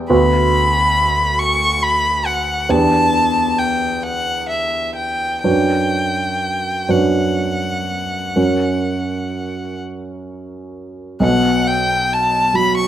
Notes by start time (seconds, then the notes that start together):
Already playing: E2 B3 G4 B4
0.09 D2 B3 F#4 B4 B5
1.39 C#6
1.83 B5
2.26 F#5
2.69 E2 D4 G4 B4 A5
3.58 G5
4.03 F#5
4.49 E5
4.96 G5
5.44 F#2 D4 F#4 B4 G5
6.89 F#2 D4 F#4 B4 F#5
8.36 F#2 C#4 F#4 A#4
11.20 B1 B2 F#5
11.67 G5
12.13 A5
12.54 F#3 B5
12.77 C#6